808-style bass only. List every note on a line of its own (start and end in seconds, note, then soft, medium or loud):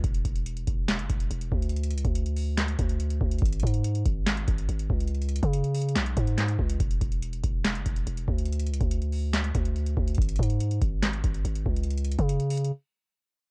0.04 0.24 E1 loud
0.25 0.66 E1 loud
0.67 1.01 E1 loud
0.99 1.09 F#1 loud
1.10 1.30 E1 loud
1.31 1.51 E1 loud
1.52 1.96 D2 loud
1.94 2.04 C#2 loud
2.05 2.76 D2 loud
2.79 3.19 D2 loud
3.21 3.41 D2 loud
3.42 3.62 G#1 loud
3.63 4.04 G#2 loud
4.06 4.46 G#1 loud
4.48 4.68 G#1 loud
4.69 4.89 G#1 loud
4.90 5.41 C#2 loud
5.43 5.97 C#3 loud
5.96 6.16 B1 loud
6.17 6.57 G#2 loud
6.59 6.79 C#2 loud
6.80 7.00 E1 loud
7.01 7.42 E1 loud
7.44 7.77 E1 loud
7.75 7.85 F#1 loud
7.86 8.06 E1 loud
8.07 8.27 E1 loud
8.28 8.72 D2 loud
8.70 8.80 C#2 loud
8.81 9.52 D2 loud
9.55 9.95 D2 loud
9.97 10.17 D2 loud
10.18 10.38 G#1 loud
10.39 10.80 G#2 loud
10.82 11.22 G#1 loud
11.24 11.44 G#1 loud
11.45 11.65 G#1 loud
11.66 12.17 C#2 loud
12.19 12.72 C#3 loud